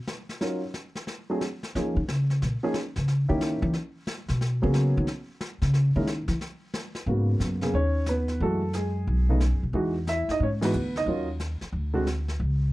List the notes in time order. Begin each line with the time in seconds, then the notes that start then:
0.07 snare
0.29 snare
0.41 F#3 C#4 D#4 F4 A#4, brush sweep, snare
0.74 snare
0.95 snare
1.07 brush sweep, snare
1.30 F#3 A3 C4 D4 G#4
1.41 snare
1.63 snare
1.75 F3 A#3 C#4 D#4 G#4, brush sweep, snare
1.96 D#3
2.08 C#3, snare
2.30 snare
2.42 A#2, brush sweep, snare
2.63 F3 A#3 C#4 D#4 G#4
2.74 snare
2.96 C#3, snare
3.08 brush sweep, snare
3.29 D#3 A#3 C#4 D#4 E4 G4
3.41 snare
3.62 E3
3.73 brush sweep, snare
4.07 snare
4.28 B2, snare
4.41 brush sweep, snare
4.62 C#3 F#3 A#3 B3 C#4 G#4
4.74 snare
4.97 D#3
5.07 brush sweep, snare
5.41 snare
5.62 C#3, snare
5.74 brush sweep, snare
5.96 D#3 G#3 A#3 C#4 E4 A#4
6.07 snare
6.28 E3, snare
6.41 brush sweep, snare
6.74 snare
6.95 snare
7.06 G#2 C#3 A#3 B3 F#4, brush sweep
7.40 F#2, snare, hi-hat pedal
7.61 C#3 A#3 B3 G#4, snare
7.73 D#2 C#4 C#5, brush sweep
8.06 B3 B4, snare, hi-hat pedal
8.28 snare
8.40 F#2 E3 G#3 A3 F#4 A4, brush sweep
8.73 G#3 G#4, snare, hi-hat pedal
9.07 B1, brush sweep
9.29 C#3 A3 B3 D#4
9.40 snare, hi-hat pedal
9.52 F#2
9.63 B2
9.73 E2 E3 G#3 D#4 F#4, brush sweep
10.07 E4 E5, snare, hi-hat pedal
10.28 D#4 D#5, muted upright bass stroke, snare
10.40 G#2 C#4 C#5, brush sweep
10.61 E3 G#3 B3 D#4 F#4 B4, snare, ride
10.73 D2, hi-hat pedal
10.96 D#4 D#5, snare
11.06 D#2 D#3 F#3 C#4 F4, brush sweep
11.40 snare, hi-hat pedal
11.61 muted upright bass stroke, snare
11.72 D2, brush sweep
11.93 D3 G#3 C4 F#4
12.07 snare, hi-hat pedal
12.28 snare
12.40 C#2, brush sweep